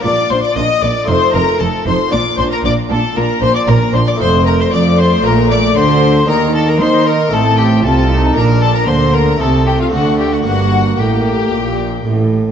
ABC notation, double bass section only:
X:1
M:4/4
L:1/8
Q:1/4=115
K:Bb
V:1 name="Double bass section" clef=bass
B,,, B,,, B,,, B,,, F,,, F,,, F,,, F,,, | B,,, B,,, B,,, B,,, B,,, B,,, B,,, B,,, | F,,,2 F,,2 B,,,2 D,,2 | E,,2 E,2 A,,,2 C,,2 |
B,,,2 D,,2 C,,2 D,,2 | G,,,2 A,,,2 B,,,2 A,,,2 |]